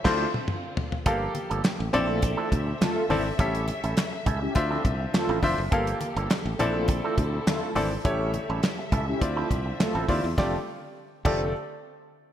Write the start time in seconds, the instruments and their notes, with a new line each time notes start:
Already playing: string section D3 F3 C4 E5
0.04 fingered electric bass D2, clean electric guitar F3 C4 E4 A4, grand piano A3 D4 E4 F4 C5, analog polysynth A3 F4 A4, kick, snare, crash
0.34 mid tom
0.48 string section A#3 F4, mid tom
0.77 floor tom
0.92 floor tom
1.06 fingered electric bass G1, clean electric guitar F3 A#3 D4 A4, string section F3 A#3 G4 A4, grand piano A#3 G4 A4 F5, kick, closed hi-hat, muted conga
1.35 closed hi-hat, muted conga
1.50 fingered electric bass G1, clean electric guitar F3 A#3 D4 A4, closed hi-hat
1.64 snare, clap, closed hi-hat, high conga
1.79 fingered electric bass A1, muted clean electric guitar stroke
1.93 fingered electric bass A#1, string section D3 C4 E5, clean electric guitar E3 C4 D4 A4, grand piano C4 E4 A4 D5, closed hi-hat, low conga
2.08 analog polysynth A3 F4 A4, muted clean electric guitar stroke
2.22 muted clean electric guitar stroke, kick, closed hi-hat, muted conga
2.37 clean electric guitar E3 C4 D4 A4, analog polysynth A3 F4 A4
2.51 fingered electric bass D2, muted clean electric guitar stroke, kick, closed hi-hat, muted conga, low conga
2.66 muted clean electric guitar stroke
2.81 analog polysynth A3 F4 A4, snare, clap, closed hi-hat, high conga
2.96 muted clean electric guitar stroke
3.09 fingered electric bass G#1, clean electric guitar E3 C4 D4 A4, grand piano C4 E4 A4 D5, open hi-hat, high conga
3.25 muted clean electric guitar stroke
3.38 fingered electric bass A1, string section C#3 G3, clean electric guitar G3 C#4 E4 A4, grand piano C#4 G4 A4 E5, kick, closed hi-hat, muted conga
3.55 closed hi-hat
3.68 closed hi-hat, muted conga
3.84 fingered electric bass A1, clean electric guitar G3 C#4 E4 A4, closed hi-hat
3.97 muted clean electric guitar stroke, snare, clap, closed hi-hat, high conga
4.13 muted clean electric guitar stroke
4.26 fingered electric bass C#2, clean electric guitar G3 C#4 E4 A4, kick, closed hi-hat, low conga
4.42 analog polysynth C#4 E4 G4, muted clean electric guitar stroke
4.55 fingered electric bass D2, string section D3 F3 C4, grand piano D4 F4 C5 E5, muted clean electric guitar stroke, kick, closed hi-hat, muted conga
4.71 clean electric guitar F3 C4 E4 A4, analog polysynth A3 F4 A4
4.85 fingered electric bass C2, kick, closed hi-hat, low conga
5.00 muted clean electric guitar stroke
5.14 analog polysynth A3 F4 A4, muted clean electric guitar stroke, snare, clap, closed hi-hat, high conga
5.29 fingered electric bass A1, clean electric guitar F3 C4 E4 A4
5.42 fingered electric bass F1, clean electric guitar F3 C4 E4 C5, grand piano D4 F4 C5 E5, kick, open hi-hat, high conga
5.58 fingered electric bass F#1
5.71 fingered electric bass G1, clean electric guitar F3 A#3 D4 A4, grand piano A#3 G4 A4 F5, string section A#3 G4 A4, kick, closed hi-hat, muted conga
5.87 closed hi-hat
6.01 muted clean electric guitar stroke, closed hi-hat, muted conga
6.16 fingered electric bass G1, clean electric guitar F3 A#3 D4 A4, closed hi-hat
6.30 muted clean electric guitar stroke, snare, clap, closed hi-hat, high conga
6.45 fingered electric bass A1, muted clean electric guitar stroke
6.59 fingered electric bass A#1, string section D3 C4 E4, clean electric guitar E3 C4 D4 A4, grand piano C4 E4 A4 D5, closed hi-hat, low conga
6.75 analog polysynth A3 F4 A4, muted clean electric guitar stroke
6.88 muted clean electric guitar stroke, kick, closed hi-hat, muted conga
7.04 clean electric guitar E3 C4 D4 A4, analog polysynth A3 F4 A4
7.18 fingered electric bass D2, muted clean electric guitar stroke, kick, closed hi-hat, low conga
7.33 muted clean electric guitar stroke
7.47 analog polysynth A3 F4 A4, snare, clap, closed hi-hat, high conga
7.62 muted clean electric guitar stroke
7.75 fingered electric bass G#1, clean electric guitar E3 C4 D4 A4, grand piano C4 E4 A4 D5, open hi-hat, high conga
8.04 fingered electric bass A1, string section C#3 G3 E5, clean electric guitar G3 C#4 E4 A4, grand piano A3 E4 G4 C#5, kick, closed hi-hat, muted conga
8.34 closed hi-hat, muted conga
8.49 fingered electric bass A1, clean electric guitar G3 C#4 E4 A4
8.63 muted clean electric guitar stroke, snare, clap, closed hi-hat, high conga
8.78 muted clean electric guitar stroke
8.92 fingered electric bass C#2, clean electric guitar G3 C#4 E4 A4, kick, closed hi-hat, low conga
9.08 analog polysynth C#4 E4 G4, muted clean electric guitar stroke
9.21 fingered electric bass D2, string section D3 F3 C4, grand piano C4 E4 F4 D5, muted clean electric guitar stroke, kick, closed hi-hat, muted conga
9.36 clean electric guitar F3 C4 E4 A4, analog polysynth A3 F4 A4
9.50 fingered electric bass C2, muted clean electric guitar stroke, kick, closed hi-hat, muted conga, low conga
9.66 muted clean electric guitar stroke
9.79 analog polysynth A3 F4 A4, muted clean electric guitar stroke, snare, clap, closed hi-hat, high conga
9.94 fingered electric bass A1, clean electric guitar F3 C4 E4 A4
10.08 fingered electric bass D#2, clean electric guitar F3 C4 E4 C5, grand piano C4 E4 F4 D5, kick, open hi-hat, high conga
10.24 fingered electric bass E2, muted clean electric guitar stroke
10.38 fingered electric bass F1, string section D3 G3 A3 F4, analog polysynth D3 C4 A4, clean electric guitar G3 C4 D4 A4, grand piano A3 F4 G4 D5, kick, snare, muted conga
11.25 fingered electric bass F1, analog polysynth D3 C4 A4, clean electric guitar G3 C4 D4 A4, grand piano A3 F4 G4 D5, kick, crash, muted conga